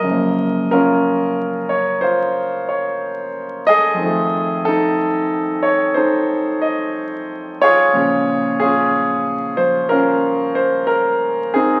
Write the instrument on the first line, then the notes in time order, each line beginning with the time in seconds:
grand piano
Already playing: A#4 D#5
0.00 F#2 C#3
0.07 F3 A#3
0.71 C#4 F4 A#4
1.69 C#5
2.01 F4 C5
2.69 C#5
3.67 G#4 A4 D#5
3.94 F2 D#3
4.01 F3 A3
4.65 D#4 A4
5.63 C#5
5.94 D#4 A4 C5
6.62 D#5
7.62 F4 G#4 C#5
7.93 A#2 C#3 F3 G#3
8.60 C#4 F4 G#4
9.57 F3 C5
9.89 C#4 F4 A#4
10.55 C5
10.87 A#4
11.54 C4 D#4 G#4